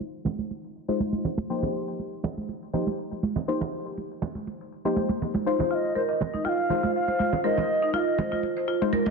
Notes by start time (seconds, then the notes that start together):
Already playing: G#3 D#4 F4 C5
0.00 muted conga, shaker
0.15 shaker
0.25 muted conga, high conga, low conga
0.39 high conga, shaker
0.51 muted conga, shaker
0.64 shaker
0.75 shaker
0.88 G#3 D#4 F4 C5, muted conga, shaker
1.00 high conga, shaker
1.13 muted conga, high conga, shaker
1.25 low conga, shaker
1.38 muted conga, high conga
1.50 F3 A#3 D#4 G4 C5, shaker
1.63 muted conga, low conga
1.75 shaker
1.88 shaker
1.99 muted conga, shaker
2.13 shaker
2.24 muted conga, high conga, low conga
2.37 high conga, shaker
2.49 muted conga, shaker
2.62 shaker
2.73 F3 A#3 D#4 G4 C5, low conga
2.87 muted conga, high conga, shaker
2.99 shaker
3.12 muted conga, shaker
3.23 high conga, shaker
3.36 muted conga, low conga, shaker
3.48 F3 A#3 D#4 G4 C5, shaker
3.61 muted conga, low conga
3.73 shaker
3.86 shaker
3.98 muted conga, shaker
4.11 shaker
4.22 muted conga, high conga, low conga
4.35 high conga, shaker
4.47 muted conga, shaker
4.61 shaker
4.72 shaker
4.85 F3 A#3 D#4 G4 C5, muted conga, shaker
4.96 high conga, shaker
5.09 muted conga, high conga, shaker
5.22 low conga, shaker
5.34 muted conga, high conga, shaker
5.46 G#3 D#4 F4 C5, shaker
5.59 C5, muted conga, low conga, shaker
5.71 F4 D#5 F5, shaker
5.85 shaker
5.95 A#4 C5, muted conga, shaker
6.09 D#5, shaker
6.21 D#5, muted conga, high conga, low conga, shaker
6.34 D#4, high conga, shaker
6.45 F4 F5 G5, muted conga, shaker
6.59 shaker
6.70 G#3 D#4 F4 C5, low conga, shaker
6.83 F4, muted conga, high conga, shaker
6.95 F5, shaker
7.08 C5, muted conga, shaker
7.19 F4, high conga, shaker
7.33 muted conga, low conga, shaker
7.44 G#3 D#4 F4 A#4 C5 D#5, shaker
7.58 D#5, muted conga, low conga, shaker
7.70 shaker
7.82 D#4, shaker
7.93 F4 F5, muted conga, shaker
7.99 D#5
8.08 shaker
8.18 C5, muted conga, high conga, low conga, shaker
8.32 F4, high conga, shaker
8.43 muted conga, shaker
8.57 C5, shaker
8.68 F4, shaker
8.81 G#3 D#4 F4 C5, muted conga, shaker
8.93 A#4, high conga, shaker
9.06 D#5, muted conga, high conga, shaker